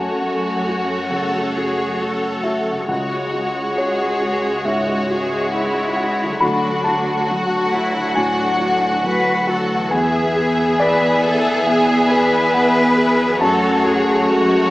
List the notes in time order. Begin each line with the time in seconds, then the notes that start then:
Already playing: F#2 A3 C#4 F#4 C#5 G#5 A5
0.22 A3
0.67 F#4
1.10 C#3 A4 F#5
1.56 F#4 G#4
2.00 A3 A4
2.43 F#4 E5
2.71 C#3
2.75 G#3
2.80 C#4
2.84 F#4
2.88 C#2 G#3 F#4 C#5 F#5
3.32 F#4
3.76 G#3 G#4 C#5
4.20 F#4
4.65 G#2 F#4 E5
5.09 F#4 G#4
5.52 G#3 E4 F#5
5.96 F#4 F#5
6.24 D3
6.29 F#3
6.33 F#4
6.40 D2 F#3 D4 F#4 F#5 B5
6.84 F#4 A5
7.30 F#3 F#4
7.73 E4 F#4
8.15 A2 D4 G#5
8.60 F#4
9.04 F#3 B4
9.47 F#4 A4 F#5
9.75 E2
9.79 B3
9.83 E4
9.88 E2 B3 G#4 B4 E5 G#5
9.93 G#4
10.36 G#4
10.80 B3 B4 D5
11.23 A4 B4
11.67 B2 G#4 E5
12.10 G#4 B4
12.54 B3 F#5
12.97 G#4
13.24 F#2
13.29 A3
13.33 C#4
13.38 F#2 A3 F#4 A4 C#5 A5
13.42 F#2 F#4
13.85 F#4 G#4
14.30 G#3 F#4